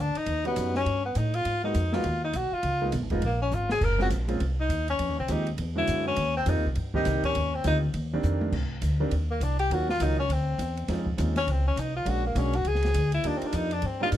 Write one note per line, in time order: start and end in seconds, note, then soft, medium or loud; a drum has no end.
0.00 0.14 D2 medium
0.00 0.19 D4 medium
0.15 0.46 D#4 loud
0.15 muted upright bass stroke soft
0.15 ride soft
0.26 0.55 D#2 medium
0.26 ride medium
0.44 0.83 G3 medium
0.44 0.83 B3 medium
0.44 0.73 B3 medium
0.44 0.84 C#4 medium
0.44 0.84 D#4 medium
0.44 0.84 F#4 medium
0.44 ride soft
0.56 0.85 F#2 medium
0.56 hi-hat pedal medium
0.56 ride medium
0.75 1.03 C#4 loud
0.75 snare soft
0.86 1.14 G2 medium
0.86 ride medium
1.05 1.19 B3 medium
1.15 1.44 A2 medium
1.15 1.36 D#4 medium
1.15 hi-hat pedal medium
1.15 ride medium
1.34 1.64 F4 loud
1.34 ride soft
1.45 1.74 G#2 medium
1.45 ride medium
1.64 1.74 G#3 medium
1.64 1.74 A#3 medium
1.64 1.74 B3 medium
1.64 1.74 D#4 medium
1.64 1.96 D#4 medium
1.64 1.74 F#4 medium
1.74 2.03 F2 loud
1.74 hi-hat pedal medium
1.74 ride medium
1.93 2.03 G#3 medium
1.93 2.03 A#3 medium
1.93 2.03 B3 medium
1.93 2.03 D#4 medium
1.93 2.23 F4 loud
1.93 2.04 F#4 medium
1.93 snare medium
2.04 2.32 D#2 medium
2.04 ride medium
2.24 2.38 D#4 medium
2.33 2.50 B1 medium
2.33 2.55 F#4 medium
2.33 hi-hat pedal medium
2.33 ride medium
2.52 2.94 F4 medium
2.52 muted upright bass stroke soft
2.63 2.92 C#2 medium
2.63 ride medium
2.82 2.92 G#3 medium
2.82 2.92 A#3 medium
2.82 2.92 B3 medium
2.82 2.92 D#4 medium
2.82 2.92 F4 medium
2.92 3.02 B1 loud
2.92 hi-hat pedal medium
2.92 ride medium
3.02 3.11 G#1 medium
3.10 3.21 F1 medium
3.10 3.21 G#3 medium
3.10 3.21 A#3 medium
3.10 3.21 B3 medium
3.10 3.21 D#4 medium
3.10 3.22 F4 medium
3.10 kick medium
3.10 ride soft
3.22 3.51 A#1 medium
3.22 3.40 A#3 medium
3.22 ride medium
3.42 3.56 C#4 medium
3.51 3.80 G#1 medium
3.51 3.71 F4 medium
3.51 hi-hat pedal medium
3.69 3.86 G#4 medium
3.69 snare medium
3.81 4.10 F#1 medium
3.81 4.01 A#4 medium
3.81 kick medium
3.81 crash medium
3.98 4.09 G#3 medium
3.98 4.09 A#3 medium
3.98 4.09 C4 medium
3.98 4.10 C#4 medium
3.98 4.10 F4 medium
3.98 4.08 F#4 medium
3.98 snare soft
4.10 4.39 A#1 loud
4.10 hi-hat pedal medium
4.10 ride medium
4.28 4.39 G#3 medium
4.28 4.39 A#3 medium
4.28 4.39 C4 medium
4.28 4.39 C#4 medium
4.28 4.39 F4 medium
4.28 ride soft
4.40 4.69 C2 medium
4.40 ride medium
4.60 4.87 D#4 medium
4.69 4.98 D#2 medium
4.69 hi-hat pedal soft
4.69 ride medium
4.88 5.16 C#4 medium
4.88 ride soft
4.99 5.09 F2 medium
4.99 ride medium
5.09 5.18 D#2 medium
5.19 5.28 C2 medium
5.19 5.34 C4 medium
5.28 5.57 D#2 loud
5.28 5.45 F3 medium
5.28 5.45 G#3 medium
5.28 5.45 C4 medium
5.28 5.46 D#4 medium
5.28 5.48 D#4 medium
5.28 5.46 G4 medium
5.28 hi-hat pedal medium
5.28 ride medium
5.47 ride soft
5.58 5.87 E2 medium
5.58 ride medium
5.75 6.14 D3 medium
5.75 6.14 G#3 medium
5.75 6.15 B3 medium
5.75 6.15 C#4 medium
5.75 6.04 E4 loud
5.75 6.15 F#4 medium
5.87 6.16 F#2 medium
5.87 hi-hat pedal medium
5.87 ride medium
6.07 6.34 C#4 medium
6.16 6.45 D#2 medium
6.16 ride medium
6.37 6.51 C4 loud
6.46 6.56 F2 loud
6.46 6.62 D#3 medium
6.46 6.63 G3 medium
6.46 6.63 A#3 medium
6.46 6.63 C4 medium
6.46 6.66 D#4 medium
6.46 6.63 F4 medium
6.46 hi-hat pedal medium
6.46 ride medium
6.56 6.65 D#2 medium
6.66 6.75 C2 medium
6.75 7.05 G2 medium
6.75 ride medium
6.94 7.32 D#3 medium
6.94 7.33 G3 medium
6.94 7.33 A#3 medium
6.94 7.33 C4 medium
6.94 7.23 D#4 medium
6.94 7.33 G4 medium
6.94 kick medium
7.05 7.23 C2 medium
7.05 snare soft
7.05 hi-hat pedal medium
7.05 ride medium
7.23 7.56 C#4 medium
7.23 muted upright bass stroke soft
7.23 kick medium
7.23 ride soft
7.35 7.64 D#2 medium
7.35 ride medium
7.55 7.65 C4 medium
7.64 7.93 D2 loud
7.64 7.81 D#3 medium
7.64 7.81 G3 medium
7.64 7.81 A#3 medium
7.64 7.81 C4 medium
7.64 7.77 D#4 medium
7.64 7.81 F4 medium
7.64 hi-hat pedal medium
7.64 ride medium
7.94 8.22 D#2 medium
7.94 ride medium
8.13 8.51 D#3 medium
8.13 8.51 G3 medium
8.13 8.51 A#3 medium
8.13 8.51 C4 medium
8.13 8.51 D4 medium
8.23 8.52 F2 loud
8.23 hi-hat pedal medium
8.41 high tom medium
8.52 8.81 C2 medium
8.52 kick medium
8.52 crash medium
8.82 9.11 D2 medium
8.82 hi-hat pedal medium
8.82 ride medium
9.00 9.10 D#3 medium
9.00 9.11 G3 medium
9.00 9.11 A#3 medium
9.00 9.11 C4 medium
9.00 9.11 D4 medium
9.11 9.40 D#2 medium
9.11 ride medium
9.31 9.44 A#3 medium
9.40 9.69 C2 medium
9.40 9.59 D4 medium
9.40 hi-hat pedal medium
9.40 ride medium
9.59 9.74 G4 loud
9.59 ride soft
9.70 9.99 D#2 medium
9.70 9.87 D#3 medium
9.70 9.87 F#3 medium
9.70 9.88 A#3 medium
9.70 9.88 C#4 medium
9.70 9.88 F4 medium
9.70 9.89 F#4 medium
9.70 ride medium
9.89 10.04 F4 medium
9.89 snare medium
10.00 10.28 C#2 loud
10.00 10.17 D#3 medium
10.00 10.17 F#3 medium
10.00 10.17 A#3 medium
10.00 10.17 C#4 medium
10.00 10.19 D#4 medium
10.00 10.17 F4 medium
10.00 hi-hat pedal medium
10.00 ride medium
10.19 10.34 C#4 medium
10.29 10.58 D2 medium
10.29 10.90 C4 medium
10.29 ride medium
10.58 10.87 E2 medium
10.58 hi-hat pedal medium
10.58 ride medium
10.77 ride soft
10.88 11.17 F2 medium
10.88 11.05 G#3 medium
10.88 11.05 C4 medium
10.88 11.05 C#4 medium
10.88 11.05 D#4 medium
10.88 11.05 F4 medium
10.88 snare soft
10.88 ride medium
11.06 kick medium
11.17 11.46 D#2 loud
11.17 11.34 G#3 medium
11.17 11.34 C4 medium
11.17 11.34 C#4 medium
11.17 11.34 D#4 medium
11.17 11.34 F4 medium
11.17 hi-hat pedal medium
11.17 ride medium
11.36 11.52 C#4 loud
11.36 snare soft
11.36 ride soft
11.47 11.75 C#2 medium
11.47 11.67 C4 medium
11.47 ride medium
11.67 11.81 C#4 medium
11.76 12.05 C2 medium
11.76 11.96 D#4 medium
11.76 hi-hat pedal medium
11.76 ride medium
11.96 12.10 F4 medium
12.05 12.34 A#1 medium
12.05 12.22 G#3 medium
12.05 12.22 A#3 medium
12.05 12.22 C#4 medium
12.05 12.22 D4 medium
12.05 12.23 F#4 medium
12.05 12.26 F#4 loud
12.05 ride medium
12.26 12.40 A#3 medium
12.35 12.64 B1 loud
12.35 12.52 G#3 medium
12.35 12.52 A#3 medium
12.35 12.52 C#4 medium
12.35 12.57 C#4 medium
12.35 12.52 D4 medium
12.35 12.52 F#4 medium
12.35 hi-hat pedal medium
12.35 ride medium
12.53 12.69 F#4 medium
12.53 ride soft
12.65 12.93 C#2 medium
12.65 13.14 G#4 medium
12.65 ride medium
12.75 snare soft
12.83 snare soft
12.83 ride soft
12.94 13.23 D2 medium
12.94 hi-hat pedal medium
12.94 ride medium
13.12 13.28 E4 medium
13.12 ride soft
13.24 13.41 D#2 medium
13.24 13.68 G3 medium
13.24 13.68 A#3 medium
13.24 13.68 D4 medium
13.24 13.38 D4 medium
13.24 13.68 D#4 medium
13.24 13.69 F4 medium
13.24 ride medium
13.37 13.48 C4 medium
13.42 muted upright bass stroke soft
13.42 ride medium
13.46 13.57 D4 medium
13.53 13.82 F2 loud
13.53 13.75 D#4 loud
13.53 hi-hat pedal medium
13.53 ride medium
13.71 13.87 D4 medium
13.71 ride soft
13.82 14.11 G2 medium
13.82 14.02 C4 medium
13.82 ride medium
14.01 14.11 G3 medium
14.01 14.11 A#3 medium
14.01 14.11 D4 medium
14.01 14.12 D#4 medium
14.01 14.12 F4 medium
14.01 14.09 F4 loud
14.12 14.17 G#2 medium
14.12 hi-hat pedal medium
14.12 ride medium